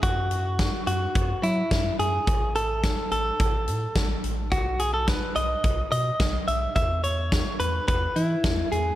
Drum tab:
HH |xxxxxxxx|xxxxxxxx|xxxxxxxx|xxxxxxxx|
SD |--o---o-|--o---o-|--o---o-|--o---o-|
BD |o-o-o-o-|o-o-o-o-|o-o-o-o-|o-o-o-o-|